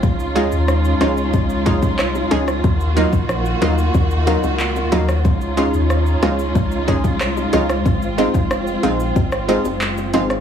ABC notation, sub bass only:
X:1
M:4/4
L:1/16
Q:1/4=92
K:Db
V:1 name="Sub bass" clef=bass
D,,3 E,,3 D,,2 D,,3 C,,3 D,,2 | E,,3 B,,,3 E,,2 E,,3 D,,3 E,,2 | D,,3 E,,3 D,,2 D,,3 C,,3 D,,2 | A,,,3 F,,,3 B,,,2 A,,,3 G,,,3 A,,,2 |]